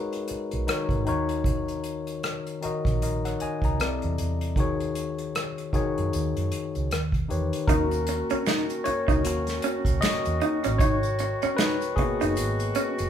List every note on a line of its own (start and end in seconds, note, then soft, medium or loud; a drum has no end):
0.00 0.24 G#1 medium
0.00 1.07 G#3 medium
0.00 0.67 D#4 medium
0.00 0.68 F#4 medium
0.00 0.70 A#4 medium
0.00 0.62 B4 medium
0.00 0.70 C#5 medium
0.13 closed hi-hat soft
0.28 muted fingered electric bass stroke soft
0.28 closed hi-hat medium
0.51 0.66 B1 medium
0.51 closed hi-hat soft
0.67 1.04 D#3 medium
0.67 1.05 D#4 medium
0.67 1.06 F#4 medium
0.67 1.07 A#4 medium
0.67 1.07 C#5 medium
0.67 cross-stick loud
0.67 closed hi-hat medium
0.89 1.10 G#1 medium
0.89 kick medium
0.89 closed hi-hat soft
1.05 2.42 D#2 medium
1.05 2.43 D#3 medium
1.05 2.44 D#4 medium
1.05 2.44 F#4 medium
1.05 2.44 A#4 medium
1.05 2.45 C#5 medium
1.05 closed hi-hat medium
1.29 closed hi-hat soft
1.44 kick medium
1.44 closed hi-hat medium
1.68 closed hi-hat soft
1.84 closed hi-hat medium
2.07 closed hi-hat soft
2.23 cross-stick medium
2.23 closed hi-hat medium
2.47 closed hi-hat soft
2.61 2.91 D#3 medium
2.61 2.91 D#4 medium
2.61 2.92 F#4 medium
2.61 2.92 A#4 medium
2.61 2.93 D#5 medium
2.61 muted fingered electric bass stroke soft
2.61 closed hi-hat medium
2.85 3.33 A#1 medium
2.85 kick medium
2.85 cross-stick soft
2.85 closed hi-hat soft
3.02 3.24 A#4 soft
3.02 3.23 D#5 medium
3.02 closed hi-hat medium
3.25 3.40 C#5 soft
3.25 3.40 F#5 medium
3.25 cross-stick soft
3.25 closed hi-hat soft
3.40 3.63 D#5 medium
3.40 3.62 G#5 medium
3.40 muted fingered electric bass stroke soft
3.40 closed hi-hat medium
3.62 3.81 C#2 medium
3.62 4.01 D#5 soft
3.62 4.01 A#5 medium
3.62 kick medium
3.62 closed hi-hat soft
3.79 4.00 C2 medium
3.79 4.08 C3 medium
3.79 4.09 C4 medium
3.79 4.09 E4 medium
3.79 4.10 A4 medium
3.79 4.10 D5 medium
3.79 cross-stick medium
3.79 closed hi-hat medium
4.02 4.17 E2 medium
4.02 closed hi-hat soft
4.18 4.57 E2 medium
4.18 closed hi-hat medium
4.41 closed hi-hat soft
4.56 5.70 D#2 medium
4.56 4.86 D#3 medium
4.56 4.86 D#4 medium
4.56 4.87 F#4 medium
4.56 4.87 G#4 medium
4.56 kick medium
4.56 closed hi-hat medium
4.60 4.88 C#5 medium
4.80 closed hi-hat soft
4.95 closed hi-hat medium
5.18 closed hi-hat soft
5.35 cross-stick medium
5.35 closed hi-hat medium
5.58 closed hi-hat soft
5.72 6.30 D#3 medium
5.72 6.30 D#4 medium
5.72 6.31 F#4 medium
5.72 6.31 G#4 medium
5.72 6.32 C#5 medium
5.72 muted fingered electric bass stroke soft
5.72 kick medium
5.72 closed hi-hat medium
5.98 6.12 F#2 medium
5.98 closed hi-hat soft
6.13 6.33 D#2 medium
6.13 closed hi-hat medium
6.37 6.50 F#2 medium
6.37 closed hi-hat soft
6.52 closed hi-hat medium
6.75 6.89 C#2 medium
6.75 closed hi-hat soft
6.91 7.25 D#2 medium
6.91 cross-stick loud
6.91 closed hi-hat medium
7.12 kick medium
7.12 closed hi-hat soft
7.28 7.50 E2 medium
7.28 7.68 D#3 medium
7.28 7.68 D#4 medium
7.28 7.69 G4 medium
7.28 7.69 B4 medium
7.28 7.69 C#5 medium
7.28 closed hi-hat medium
7.53 closed hi-hat soft
7.67 8.22 D#2 medium
7.67 13.10 D#3 medium
7.67 8.81 A#3 medium
7.67 10.78 A#3 medium
7.67 8.81 C#4 medium
7.67 10.77 C#4 medium
7.67 7.83 D#4 medium
7.67 8.82 F#4 medium
7.67 13.10 F#4 medium
7.67 8.88 A#4 medium
7.67 kick loud
7.67 closed hi-hat medium
7.67 shaker medium
7.91 closed hi-hat soft
7.91 shaker soft
8.07 muted clean electric guitar stroke soft
8.07 closed hi-hat medium
8.07 shaker soft
8.30 8.41 C#4 medium
8.30 muted fingered electric bass stroke soft
8.30 closed hi-hat medium
8.30 shaker soft
8.47 8.62 D#4 medium
8.47 finger snap medium
8.47 snare medium
8.47 closed hi-hat medium
8.47 shaker medium
8.70 closed hi-hat soft
8.70 shaker soft
8.84 9.98 C#5 loud
8.84 muted clean electric guitar stroke medium
8.84 muted fingered electric bass stroke soft
8.84 closed hi-hat medium
9.08 9.26 C#2 medium
9.08 9.18 D#4 medium
9.08 kick medium
9.08 closed hi-hat soft
9.08 shaker soft
9.25 9.59 D#2 medium
9.25 9.59 A#3 soft
9.25 9.60 C#4 soft
9.25 9.60 F#4 medium
9.25 closed hi-hat medium
9.25 shaker medium
9.47 snare soft
9.47 closed hi-hat soft
9.47 shaker medium
9.62 9.78 C#4 medium
9.62 closed hi-hat medium
9.62 shaker soft
9.85 10.00 C#2 medium
9.85 kick medium
9.85 closed hi-hat soft
9.85 shaker soft
10.01 10.82 D#5 loud
10.01 finger snap medium
10.01 muted clean electric guitar stroke soft
10.01 muted fingered electric bass stroke soft
10.01 snare loud
10.01 closed hi-hat medium
10.01 shaker medium
10.25 10.40 E2 medium
10.25 closed hi-hat soft
10.25 shaker soft
10.41 10.56 D#4 medium
10.41 closed hi-hat medium
10.64 10.79 A1 medium
10.64 10.74 C#4 medium
10.64 closed hi-hat medium
10.64 shaker soft
10.78 13.10 B2 medium
10.78 13.10 G#3 medium
10.78 10.95 D#4 medium
10.78 11.59 C#5 medium
10.78 kick loud
10.78 closed hi-hat medium
10.78 shaker medium
11.03 closed hi-hat soft
11.03 shaker medium
11.19 muted clean electric guitar stroke soft
11.19 closed hi-hat medium
11.19 shaker soft
11.42 11.53 C#4 medium
11.42 muted fingered electric bass stroke soft
11.42 closed hi-hat medium
11.42 shaker soft
11.56 11.73 D#4 medium
11.56 11.74 B4 loud
11.56 finger snap medium
11.56 snare loud
11.56 closed hi-hat medium
11.56 shaker medium
11.81 closed hi-hat soft
11.81 shaker medium
11.96 12.51 A#3 medium
11.96 12.52 B3 medium
11.96 12.52 F#4 medium
11.96 13.10 G#4 medium
11.96 muted fingered electric bass stroke medium
11.96 muted clean electric guitar stroke soft
11.96 kick medium
11.96 closed hi-hat medium
12.21 12.39 F#1 medium
12.21 12.31 D#4 medium
12.21 closed hi-hat soft
12.21 shaker soft
12.36 12.71 G#1 medium
12.36 closed hi-hat medium
12.36 shaker medium
12.60 closed hi-hat medium
12.60 shaker soft
12.75 12.90 C#4 medium
12.75 closed hi-hat medium
12.75 shaker soft
12.98 13.10 F#1 medium
12.98 closed hi-hat medium
12.98 shaker medium